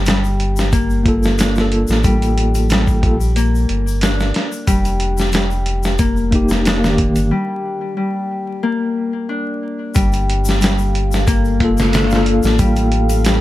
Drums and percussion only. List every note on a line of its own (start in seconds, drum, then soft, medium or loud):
0.06 snare loud
0.06 closed hi-hat medium
0.06 shaker medium
0.24 shaker soft
0.40 closed hi-hat medium
0.56 snare soft
0.56 shaker medium
0.72 kick loud
0.72 closed hi-hat medium
0.72 shaker medium
0.90 shaker soft
1.06 kick medium
1.06 closed hi-hat medium
1.23 snare medium
1.23 shaker medium
1.38 snare loud
1.38 closed hi-hat medium
1.38 shaker medium
1.55 snare medium
1.55 shaker soft
1.72 closed hi-hat medium
1.88 snare soft
1.88 shaker medium
2.04 kick loud
2.04 closed hi-hat medium
2.04 shaker medium
2.22 closed hi-hat soft
2.22 shaker soft
2.38 closed hi-hat medium
2.55 closed hi-hat soft
2.55 shaker medium
2.70 snare loud
2.70 closed hi-hat medium
2.70 shaker medium
2.87 kick medium
2.87 shaker soft
3.03 kick medium
3.03 closed hi-hat medium
3.21 shaker medium
3.36 closed hi-hat medium
3.36 shaker medium
3.55 shaker soft
3.69 closed hi-hat medium
3.87 shaker medium
4.01 snare loud
4.01 closed hi-hat medium
4.01 shaker medium
4.20 snare soft
4.20 shaker soft
4.34 snare soft
4.34 closed hi-hat medium
4.52 shaker medium
4.67 kick loud
4.67 closed hi-hat medium
4.67 shaker medium
4.85 closed hi-hat soft
4.85 shaker soft
5.00 closed hi-hat medium
5.18 snare soft
5.18 shaker medium
5.32 snare loud
5.32 closed hi-hat medium
5.32 shaker medium
5.51 shaker soft
5.66 closed hi-hat medium
5.83 snare soft
5.83 shaker medium
5.98 kick loud
5.98 closed hi-hat medium
5.98 shaker medium
6.17 shaker soft
6.32 kick medium
6.32 closed hi-hat medium
6.49 snare soft
6.49 shaker medium
6.65 snare loud
6.65 closed hi-hat medium
6.65 shaker medium
6.84 snare medium
6.84 shaker soft
6.98 kick medium
6.98 closed hi-hat medium
7.16 closed hi-hat soft
7.16 shaker medium
9.95 kick loud
9.95 closed hi-hat medium
9.95 shaker medium
10.12 closed hi-hat soft
10.12 shaker soft
10.30 closed hi-hat medium
10.45 snare soft
10.45 shaker medium
10.61 snare loud
10.61 closed hi-hat medium
10.61 shaker medium
10.78 shaker soft
10.95 closed hi-hat medium
11.12 snare medium
11.12 shaker medium
11.27 kick loud
11.27 closed hi-hat medium
11.27 shaker medium
11.45 shaker soft
11.60 kick medium
11.60 closed hi-hat medium
11.78 snare medium
11.78 shaker medium
11.93 snare loud
11.93 closed hi-hat medium
11.93 shaker medium
12.10 snare medium
12.10 shaker soft
12.26 closed hi-hat medium
12.43 snare soft
12.43 shaker medium
12.59 kick loud
12.59 closed hi-hat medium
12.59 shaker medium
12.76 closed hi-hat soft
12.76 shaker soft
12.92 closed hi-hat medium
13.09 closed hi-hat soft
13.09 shaker medium
13.25 snare loud
13.25 closed hi-hat medium
13.25 shaker medium